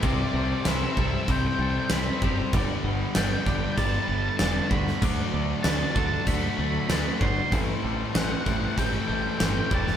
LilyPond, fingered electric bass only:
\new Staff \with { instrumentName = "Fingered electric bass" } { \clef bass \time 4/4 \key c \lydian \tempo 4 = 96 c,8 c,8 c,8 c,8 c,8 c,8 c,8 fis,,8 | g,,8 g,,8 g,,8 g,,8 g,,8 g,,8 e,,8 d,8 | d,8 d,8 d,8 d,8 d,8 d,8 d,8 g,,8 | a,,8 a,,8 a,,8 a,,8 a,,8 a,,8 g,,8 e,,8 | }